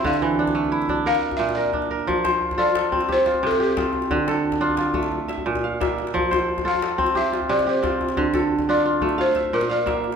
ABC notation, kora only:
X:1
M:12/8
L:1/8
Q:3/8=118
K:F
V:1 name="Kora"
C E, D2 E2 B3 B2 B- | B c2 A A2 G F2 G F2- | F A2 F F3 e2 f e2- | e c2 A A2 G F2 G F2- |
F A2 F F2 f e2 f e2 |]
V:2 name="Kora"
D,2 z A,2 D z2 B,,2 D2 | F,2 z F2 C z2 C,2 C2 | D,2 z D2 A, z2 B,,2 B,2 | F,2 z F2 C z2 C,2 C2 |
D,2 z D2 A, z2 B,,2 B,2 |]